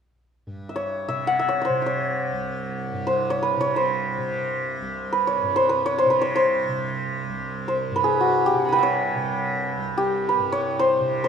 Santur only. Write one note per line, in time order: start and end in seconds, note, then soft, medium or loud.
0.69 1.08 E5 soft
0.76 1.48 C#5 medium
1.09 1.39 E5 medium
1.27 3.42 F#5 medium
1.39 1.82 E5 medium
1.49 1.61 C#5 medium
1.61 1.92 C5 medium
1.61 1.71 C#5 soft
1.82 4.13 E5 soft
1.86 3.13 C#5 medium
3.07 3.36 C5 medium
3.30 3.60 C#5 medium
3.42 3.82 B4 medium
3.61 3.82 C#5 medium
3.76 5.18 C5 medium
5.12 5.62 B4 medium
5.27 5.62 C#5 medium
5.56 5.75 C5 medium
5.69 6.04 B4 medium
5.86 6.04 C#5 medium
5.98 6.16 C5 medium
6.10 6.42 B4 medium
6.21 6.42 C#5 medium
6.36 7.68 C5 medium
7.68 8.02 C5 medium
7.96 8.68 B4 medium
8.04 8.52 G#4 medium
8.21 8.52 F#4 medium
8.46 8.81 G4 medium
8.59 8.78 C6 soft
8.59 10.27 C#6 soft
8.65 10.04 G#5 soft
8.65 10.46 B5 soft
8.72 10.28 B4 medium
8.72 10.04 F#5 soft
8.72 10.80 G5 soft
8.78 11.09 E5 medium
8.83 10.52 C#5 medium
9.98 11.28 G4 medium
10.29 10.85 B4 medium
10.52 10.85 C#5 medium
10.79 11.24 C5 medium
11.24 11.28 C5 medium